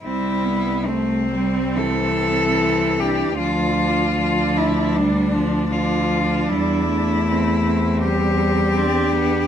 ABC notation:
X:1
M:4/4
L:1/8
Q:1/4=77
K:C
V:1 name="Cello"
E2 C2 A3 G | F3 E D2 F2 | E4 G4 |]
V:2 name="Cello"
C B, C4 C D | D2 D4 D2- | D2 C C3 D2 |]
V:3 name="Cello" clef=bass
G,2 A, G, E,4 | F,2 F,2 G, F, F,2 | G, A,3 G,2 C B, |]
V:4 name="Cello" clef=bass
C,,8 | D,,8 | E,,8 |]